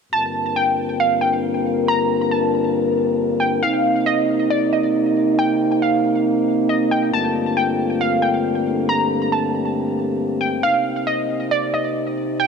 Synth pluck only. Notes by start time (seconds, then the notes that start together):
0.13 A5
0.56 G5
1.00 F5
1.21 G5
1.88 A#5
2.31 A5
3.40 G5
3.63 F5
4.06 D#5
4.50 D5
4.73 D#5
5.39 G5
5.82 F5
6.69 D#5
6.91 G5
7.13 A5
7.57 G5
8.01 F5
8.22 G5
8.89 A#5
9.32 A5
10.41 G5
10.63 F5
11.07 D#5
11.51 D5
11.74 D#5
12.40 G5